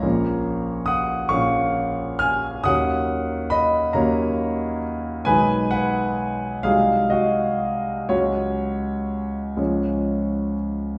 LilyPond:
<<
  \new Staff \with { instrumentName = "Grand piano" } { \time 6/8 \key cis \mixolydian \tempo 4. = 44 <des'' bes''>4 <fis'' dis'''>8 <eis'' cis'''>4 <gis'' eis'''>8 | <fis'' dis'''>4 <dis'' b''>8 <cis'' ais''>4 r8 | <b' gis''>8 <b' fis''>4 <gis' eis''>8 <fis' dis''>4 | <fis' cis''>2~ <fis' cis''>8 r8 | }
  \new Staff \with { instrumentName = "Grand piano" } { \clef bass \time 6/8 \key cis \mixolydian <ais,, eis ais cis'>4. <ais,, eis ais cis'>4. | <dis, fis ais cis'>4. <dis, fis ais cis'>4. | <b,, dis gis dis'>4. <bis,, fis gis dis'>4. | <cis, fis gis>4. <cis, eis gis cis'>4. | }
>>